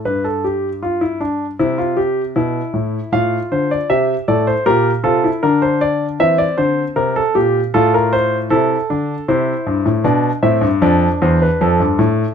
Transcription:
<<
  \new Staff \with { instrumentName = "Grand piano" } { \time 4/4 \key f \major \tempo 4 = 78 << { r1 | f''8 c''16 d''16 e''8 d''16 c''16 bes'8 a'8 bes'16 c''16 d''8 | e''16 d''16 c''8 bes'16 a'16 g'8 a'16 bes'16 c''8 a'4 | c''4 d''8 e''8 d''8 c''16 b'16 a'4 | } \\ { b'16 a'16 g'8 f'16 e'16 d'8 e'16 f'16 g'8 e'4 | f'4 g'8 a'8 g'8 f'16 e'16 d'4 | c'2 f'4 e'8 d'8 | e'4 d'8 c'8 d'2 | } >> }
  \new Staff \with { instrumentName = "Grand piano" } { \clef bass \time 4/4 \key f \major g,2 c4 b,8 a,8 | a,8 d8 c8 a,8 bes,8 c8 d4 | e8 d8 c8 bes,8 a,4 c8 d8 | c8 g,16 a,16 b,8 a,16 g,16 f,8 e,8 f,16 g,16 a,8 | }
>>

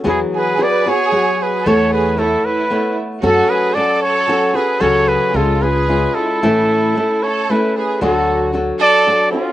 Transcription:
<<
  \new Staff \with { instrumentName = "Trumpet" } { \time 3/4 \key fis \minor \tempo 4 = 113 gis'8 b'8 d''8 cis''4 b'8 | cis''8 b'8 a'8 b'4 r8 | a'8 b'8 d''8 cis''4 b'8 | cis''8 b'8 a'8 b'4 a'8~ |
a'4. cis''8 b'8 b'8 | a'4 r8 d''4 eis'8 | }
  \new Staff \with { instrumentName = "Violin section" } { \time 3/4 \key fis \minor e'8 gis'8 b'8 gis'4 gis'8 | a'8 gis'8 e'8 e'4 r8 | fis'8 gis'8 a'8 a'4 gis'8 | a'8 gis'8 eis'8 gis'4 e'8~ |
e'4. a'8 e'8 gis'8 | fis'4 r8 a'4 cis'8 | }
  \new Staff \with { instrumentName = "Nylon-string guitar" } { \time 3/4 \key fis \minor <e fis b fis' gis'>4 <fis b fis' gis'>8 <b fis' gis'>8 <fis b fis' gis'>4 | <e a b a' cis''>4 <a b a' cis''>4 <a b a' cis''>4 | <fis cis' fis' a'>4 <fis cis' fis' a'>4 <fis cis' fis' a'>8 <cis' fis' a'>8 | <cis fis cis' fis' a'>4 <gis cis' eis' gis'>8 <cis' eis' gis'>8 <gis cis' eis' gis'>4 |
<a, e a cis' e' a'>4 <a cis' e' a'>4 <a cis' e' a'>4 | <d fis d' fis' a'>4 <fis d' fis' a'>4 <fis d' fis' a'>8 <d' fis' a'>8 | }
  \new Staff \with { instrumentName = "Upright bass" } { \clef bass \time 3/4 \key fis \minor e,8 r2 r8 | e,2 r4 | fis,8 r2 r8 | cis,4 cis,2 |
a,,8 r2 r8 | d,2 r4 | }
>>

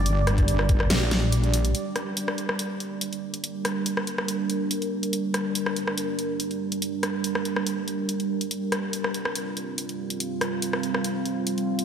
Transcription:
<<
  \new Staff \with { instrumentName = "Ambient pad" } { \time 4/4 \key g \minor \tempo 4 = 142 << { <d' d''>1 | <d' bes'>1~ | <d' bes'>1~ | <d' bes'>1~ |
<d' bes'>1 | <c' f'>1~ | <c' f'>1 | } \\ { g1 | g1~ | g1~ | g1~ |
g1~ | g1~ | g1 | } >> }
  \new Staff \with { instrumentName = "Wobble bass" } { \clef bass \time 4/4 \key g \minor g,,2 bes,,2 | r1 | r1 | r1 |
r1 | r1 | r1 | }
  \new DrumStaff \with { instrumentName = "Drums" } \drummode { \time 4/4 hh8 <hh ss>16 <hh bd>16 hh16 ss16 <hh bd>16 ss16 <hh sn>8 <hh sn>8 hh16 hh16 hho16 hh16 | hh8 <hh ss>8 hh16 ss16 hh16 ss16 hh8 hh8 hh16 hh8 hh16 | hh8 <hh ss>8 hh16 ss16 hh16 ss16 hh8 hh8 hh16 hh8 hh16 | hh8 <hh ss>8 hh16 ss16 hh16 ss16 hh8 hh8 hh16 hh8 hh16 |
hh8 <hh ss>8 hh16 ss16 hh16 ss16 hh8 hh8 hh16 hh8 hh16 | hh8 <hh ss>8 hh16 ss16 hh16 ss16 hh8 hh8 hh16 hh8 hh16 | hh8 <hh ss>8 hh16 ss16 hh16 ss16 hh8 hh8 hh16 hh8 hh16 | }
>>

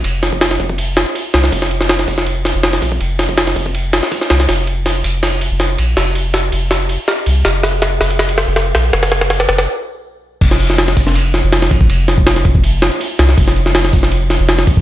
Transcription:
<<
  \new Staff \with { instrumentName = "Sub bass" } { \clef bass \time 4/4 \key c \minor \tempo 4 = 162 f,,4. f,,4~ f,,16 r8. c,8 | f,,4. f,,4~ f,,16 f,,8. bes,,8 | f,,4. f,,4~ f,,16 r8. c,8 | f,,4. f,,4~ f,,16 f,,8. bes,,8 |
f,,4. f,,4~ f,,16 r8. c,8 | f,,4. f,,4~ f,,16 f,,8. bes,,8 | f,,4. f,,8 r2 | f,,4. f,,4~ f,,16 f,,8. bes,,8 |
f,,4. f,,4~ f,,16 r8. c,8 | f,,4. f,,4~ f,,16 f,,8. bes,,8 | }
  \new DrumStaff \with { instrumentName = "Drums" } \drummode { \time 4/4 cymr8 <cymr sn>16 bd16 <cymr sn>16 sn16 <bd cymr>16 bd16 cymr8 <cymr sn>8 cymr8 <cymr sn>16 sn16 | <bd cymr>16 sn16 cymr16 sn16 <cymr sn>16 sn16 <hho bd>16 sn16 cymr8 <cymr sn>8 <cymr sn>16 sn16 <bd cymr>16 bd16 | cymr8 <cymr sn>16 bd16 <cymr sn>16 sn16 <bd cymr>16 bd16 cymr8 <cymr sn>16 sn16 <hho bd>16 sn16 <cymr sn>16 sn16 | <cymr sn>8 cymr8 <cymr sn>8 hho8 <cymr sn>8 cymr8 <cymr sn>8 cymr8 |
<cymr sn>8 cymr8 <cymr sn>8 cymr8 <cymr sn>8 cymr8 <cymr sn>8 cymr8 | <cymr sn>8 <cymr sn>8 <cymr sn>8 <cymr sn>16 cymr16 <cymr sn>16 cymr16 <cymr sn>8 <cymr sn>8 <cymr sn>8 | <cymr sn>16 <cymr sn>16 sn16 <cymr sn>16 <cymr sn>16 sn16 <cymr sn>16 <cymr sn>16 r4 r4 | <cymc bd cymr>16 sn16 cymr16 sn16 <cymr sn>16 sn16 <hho bd>16 sn16 cymr8 <cymr sn>8 <cymr sn>16 sn16 <bd cymr>16 bd16 |
cymr8 <cymr sn>16 bd16 <cymr sn>16 sn16 <bd cymr>16 bd16 cymr8 <cymr sn>8 cymr8 <cymr sn>16 sn16 | <bd cymr>16 sn16 cymr16 sn16 <cymr sn>16 sn16 <hho bd>16 sn16 cymr8 <cymr sn>8 <cymr sn>16 sn16 <bd cymr>16 bd16 | }
>>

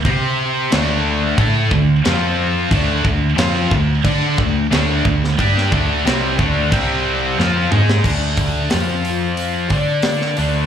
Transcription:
<<
  \new Staff \with { instrumentName = "Distorted electric guitar" } { \time 4/4 \key d \minor \tempo 4 = 90 <c' g' c''>4 <d a d'>4 <a e' a'>8 <d a>8 <f c' f'>4 | <d a d'>8 <d a>8 <f c' f'>8 <d a>8 <d' a' d''>8 <d a>8 <d a d'>8 <d a>8 | <g d' g'>8 <d a d'>8 <c g c'>8 <d a d'>8 <c g c'>4 <f c' f'>8 <aes ees' aes'>8 | <d a d'>4 <f c' f'>4. <d' a' d''>4 <d a d'>8 | }
  \new Staff \with { instrumentName = "Distorted electric guitar" } { \time 4/4 \key d \minor <c' g' c''>4 <d a d'>4 <a e' a'>8 <d a>8 <f c' f'>4 | <d a d'>8 <d a>8 <f c' f'>8 <d a>8 <d' a' d''>8 <d a>8 <d a d'>8 <d a>8 | <g d' g'>8 <d a d'>8 <c g c'>8 <d a d'>8 <c g c'>4 <f c' f'>8 <aes ees' aes'>8 | r1 | }
  \new Staff \with { instrumentName = "Overdriven electric guitar" } { \time 4/4 \key d \minor <c' g' c''>4 <d a d'>4 <a e' a'>8 <d a>8 <f c' f'>4 | <d a d'>8 <d a>8 <f c' f'>8 <d a>8 <d' a' d''>8 <d a>8 <d a d'>8 <d a>8 | <g d' g'>8 <d a d'>8 <c g c'>8 <d a d'>8 <c g c'>4 <f c' f'>8 <aes ees' aes'>8 | <d a d'>4 <f c' f'>4. <d' a' d''>4 <d a d'>8 | }
  \new Staff \with { instrumentName = "Fingered electric bass" } { \clef bass \time 4/4 \key d \minor c4 d,4 a,8 d,8 f,4 | d,8 d,8 f,8 d,8 d8 d,8 d,8 d,8 | g,8 d,8 c,8 d,8 c,4 f,8 aes,8 | d,4 f,4. d4 d,8 | }
  \new DrumStaff \with { instrumentName = "Drums" } \drummode { \time 4/4 <cymc bd>4 <cymc sn>4 <cymc bd>8 bd8 <cymc sn>4 | <cymc bd>8 bd8 <cymc sn>8 bd8 <cymc bd>8 bd8 <cymc sn>8 bd16 sn16 | <cymc bd>16 sn16 bd8 <cymc sn>8 bd8 <cymc bd>4 sn8 toml16 sn16 | <cymc bd>8 <hho bd>8 <hho sn>8 hho8 hho8 <hho bd>8 <hho sn>16 sn16 hho8 | }
>>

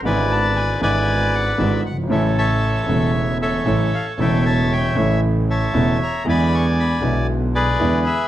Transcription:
<<
  \new Staff \with { instrumentName = "Bandoneon" } { \time 4/4 \key a \phrygian \tempo 4 = 116 << { gis''8 a''8 gis''8 gis''4 fis''8 e''8 fis''8 | e''8 a''4 r4 e''4 f''8 | g''8 a''8 g''8 r4 a''4 bes''8 | b''8 cis'''8 b''8 r4 d''4 e''8 | } \\ { <b' d''>4. <b' d''>2 r8 | <a' cis''>8 <cis'' e''>2 <a' cis''>4. | <cis'' e''>2 r8 <cis'' e''>4. | <d'' gis''>2 r8 <gis' b'>4. | } >> }
  \new Staff \with { instrumentName = "Grand piano" } { \clef bass \time 4/4 \key a \phrygian <gis,, gis, d gis b e'>4. <gis,, gis, d gis b e'>4. <gis,, gis, d gis b e'>8 r32 fis,,32 g,,32 gis,,32 | <a,, a, cis e a e'>4. <e,, e, cis e a e'>4. <a,, a, cis e a e'>8 r8 | <e,, e, cis e a e'>4. <a,, a, cis e a e'>4. <e,, e, cis e a e'>8 r8 | <e, d e gis b e'>4. <b,, b, d gis b e'>4. <e, d e gis b e'>8 r8 | }
  \new Staff \with { instrumentName = "Double bass" } { \clef bass \time 4/4 \key a \phrygian gis,,4. gis,,4. gis,,8 g,,8 | a,,4. e,,4. a,,8 r8 | e,,4. a,,4. e,,8 r8 | e,4. b,,4. e,8 r8 | }
>>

